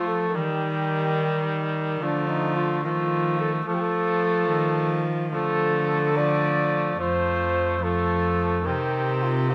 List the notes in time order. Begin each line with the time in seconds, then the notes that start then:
Already playing: F3 A3
0.07 A4
0.34 D#3 G3 G4
2.01 D3 F3 A3 D4
2.29 D#4
2.56 F4
2.84 D#3 F3 A3 F4
3.39 A4
3.67 F3 A3 A4
3.74 G4
3.80 A4
4.50 D#3
5.33 D3 F3 A3 A4
6.16 F3 A3 D5
7.00 F2 F3 A3 C5
7.83 F3 A3 A4
8.66 C3 D#3 C4 G4
9.23 F4
9.50 D#3 C4 G4